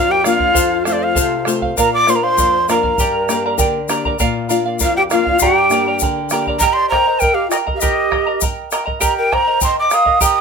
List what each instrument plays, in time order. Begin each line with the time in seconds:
Already playing: nylon-string guitar F2 A#3 D4 F4, quena F4 F5, charango A#4 D5 F5
0.09 quena G4 G5
0.24 nylon-string guitar A#3 D4 F4, quena F4 F5, charango A#4 D5 F5, bombo rim, shaker
0.39 charango D5 F5, bombo low
0.53 nylon-string guitar F2, charango A4 C5 F5, bombo low, shaker
0.84 nylon-string guitar A3 C4 F4, charango A4 C5 F5, bombo rim, shaker
0.88 quena F4 F5
0.93 quena F4 D5
0.99 quena F4, charango C5 F5
1.03 quena F5
1.15 nylon-string guitar C3, charango A4 C5 F5, bombo low, shaker
1.45 nylon-string guitar A3 C4 F4, charango A4 C5 F5, bombo rim, shaker
1.62 charango C5 F5, bombo low
1.77 nylon-string guitar A#2, quena A#4 A#5, charango A#4 D5 F5, bombo low, shaker
1.93 quena D5 D6
2.07 nylon-string guitar A#3 D4 F4, charango A#4 D5 F5, quena C5 C6, bombo rim, shaker
2.15 quena A#4 A#5
2.22 quena C5 C6, charango D5 F5
2.37 nylon-string guitar F2, charango A#4 D5 F5, bombo low, shaker
2.68 nylon-string guitar A#3 D4 F4, charango A#4 D5 F5, quena A#4 A#5, bombo rim, shaker
2.83 charango D5 F5, bombo low
2.98 nylon-string guitar G2, charango G4 A#4 D5 G5 A#5, bombo low, shaker
3.28 nylon-string guitar A#3 D4 G4, charango A#4 D5 G5 A#5, bombo rim, shaker
3.46 charango A#4 D5 A#5
3.58 nylon-string guitar D3 A#4, charango A#4 D5 G5 A#5, bombo low, shaker
3.89 nylon-string guitar A#3 D4 G4, charango A#4 D5 G5 A#5, bombo rim, shaker
4.05 charango A#4 D5 A#5, bombo low
4.19 nylon-string guitar A#2, charango A#4 D5 F5, bombo low, shaker
4.49 nylon-string guitar A#3 D4 F4, charango A#4 D5 F5, shaker
4.66 charango D5 F5
4.79 nylon-string guitar F2, quena F4 F5, charango A#4 D5 F5, bombo low, shaker
4.97 quena G4 G5
5.10 nylon-string guitar A#3 D4 F4, quena F4 F5, charango A#4 D5 F5, bombo rim, shaker
5.25 charango D5 F5, bombo low
5.39 nylon-string guitar G2, quena G4 G5, charango G4 A#4 D5 G5 A#5, bombo low, shaker
5.70 nylon-string guitar A#3 D4 G4, charango A#4 D5 G5 A#5, bombo rim, shaker
5.87 charango A#4 D5 A#5
5.99 nylon-string guitar D3, charango A#4 D5 G5, bombo low, shaker
6.03 charango A#5
6.30 nylon-string guitar A#3 D4 G4, charango A#4 D5 G5 A#5, bombo rim, shaker
6.47 charango A#4 D5 A#5, bombo low
6.59 charango G4 A#4 D#5 G5 A#5, quena D#5 A#5, bombo low, shaker
6.73 quena D5 C6
6.89 quena C5 A#5, charango G5, bombo rim, bombo low
6.93 charango A#4 D#5 A#5
7.06 charango A#4 D#5 A#5
7.19 quena A#4 G5, charango A#4 G5, bombo low, shaker
7.24 charango D#5 A#5
7.34 quena G4 F5
7.48 quena F4 D#5, charango G5, bombo rim, shaker
7.53 charango A#4 D#5 A#5
7.66 charango A#4 D#5 A#5, bombo low
7.73 quena G4 F5
7.78 quena G4 D#5, charango G4 A#4 G5, shaker
7.83 charango D#5 A#5, bombo low
8.11 charango A#4 D#5 G5 A#5, bombo rim, bombo low
8.26 charango A#4 D#5 A#5
8.41 charango A#4 D#5 G5 A#5, bombo low, shaker
8.71 charango A#4 D#5 G5 A#5, bombo rim, shaker
8.86 charango A#4 D#5 A#5, bombo low
9.00 charango G4 A#4 D#5 G5 A#5, quena D#5 A#5, bombo low, shaker
9.17 quena A#4 G5
9.32 charango A#4 D#5 G5 A#5, quena C5 A#5, bombo rim, bombo low
9.47 charango A#4 D#5 A#5
9.61 charango A#4 D#5 G5 A#5, quena D#5 C6, bombo low, shaker
9.79 quena D#5 D6
9.90 charango A#4 D#5 G5 A#5, quena F5 D#6, bombo rim, shaker
10.05 charango A#4 D#5 A#5, bombo low
10.21 charango G4 A#4 D#5 G5 A#5, quena G5 D#6, bombo low, shaker